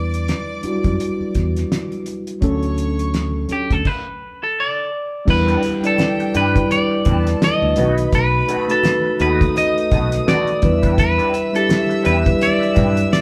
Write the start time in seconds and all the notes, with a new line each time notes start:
Already playing: E2 G3 D4 E4 B4 D5 D6
0.14 closed hi-hat
0.28 snare, closed hi-hat
0.63 F#3 D4 E4 F#4, muted fingered electric bass stroke, closed hi-hat
0.69 G3
0.84 F#2, kick, closed hi-hat
1.00 closed hi-hat
1.20 muted fingered electric bass stroke
1.35 E2, kick, snare, closed hi-hat
1.56 snare, closed hi-hat
1.72 snare, closed hi-hat
1.92 closed hi-hat
2.06 closed hi-hat
2.27 closed hi-hat
2.41 D2 F#3 C#4 D4 A4 C#5 C#6, kick, closed hi-hat
2.63 closed hi-hat
2.78 closed hi-hat
2.99 closed hi-hat
3.14 snare, closed hi-hat
3.48 F#3 C#4 D4 A4, muted fingered electric bass stroke, closed hi-hat
3.52 G4
3.71 D2 A4, kick, closed hi-hat
3.85 B4, kick, crash
4.43 A4
4.60 D5
5.25 E2 G3 D4 E4 G4 B4 G5, muted clean electric guitar stroke, kick, crash
5.30 B4
5.47 B3 D4 G4 B4, closed hi-hat
5.63 muted clean electric guitar stroke, closed hi-hat, muted conga
5.82 G3 D4 E4 D5, muted clean electric guitar stroke, closed hi-hat
5.87 A4
5.98 muted clean electric guitar stroke, snare, closed hi-hat, high conga
6.19 muted clean electric guitar stroke, closed hi-hat
6.34 G2 B3 D4 G4 B4, closed hi-hat, muted conga
6.53 G3 D4 E4 B4, muted clean electric guitar stroke, kick, closed hi-hat
6.71 D5, closed hi-hat, muted conga
6.91 muted clean electric guitar stroke
7.05 E2 B3 D4 G4 A4 B4 A5, kick, closed hi-hat, muted conga, low conga
7.26 muted clean electric guitar stroke, snare, closed hi-hat
7.41 D#5, muted clean electric guitar stroke, snare, closed hi-hat, high conga
7.62 D2
7.75 B1 A3 D4 D#4 F#4 B4 C#5 B5, closed hi-hat, high conga
7.83 D#4
7.98 closed hi-hat
8.13 B1 B4, kick, closed hi-hat
8.48 A3 D#4 F#4 B4, closed hi-hat, muted conga
8.68 A3 D#4 F#4 A4 B4, closed hi-hat
8.83 snare, closed hi-hat, high conga
9.05 muted clean electric guitar stroke
9.18 D#2 A3 D#4 F#4 A4 B4 D#6, closed hi-hat, muted conga
9.41 muted clean electric guitar stroke, kick, closed hi-hat
9.55 D#5, muted clean electric guitar stroke, closed hi-hat, muted conga
9.78 closed hi-hat
9.91 B1 A3 D#4 F#4 B4, kick, snare, closed hi-hat, muted conga, low conga
10.11 muted clean electric guitar stroke, snare, closed hi-hat
10.26 A3 D#4 F#4 B4 D5, snare, closed hi-hat, high conga
10.47 closed hi-hat
10.62 E2 G3 D4 E4 B4 E5 E6, muted clean electric guitar stroke, kick, closed hi-hat, high conga
10.82 B3 D4 G4 B4, kick, closed hi-hat
10.97 B4, muted clean electric guitar stroke, kick, closed hi-hat
11.18 B3 D4 G4 B4, closed hi-hat
11.33 muted clean electric guitar stroke, closed hi-hat
11.53 G3 D4 E4 G4 A4, muted clean electric guitar stroke, closed hi-hat
11.69 muted clean electric guitar stroke, snare, closed hi-hat, high conga
11.89 muted clean electric guitar stroke, closed hi-hat
12.03 E2 B3 D4 G4 B4, closed hi-hat, muted conga
12.24 F#3 D4 E4 B4, muted clean electric guitar stroke, kick, closed hi-hat
12.31 G3
12.41 D5, closed hi-hat, muted conga
12.60 muted clean electric guitar stroke, closed hi-hat
12.74 G2 B3 D4 G4 B4, kick, snare, closed hi-hat, muted conga, low conga
12.95 muted clean electric guitar stroke, closed hi-hat
13.10 D5, muted clean electric guitar stroke, snare, closed hi-hat, high conga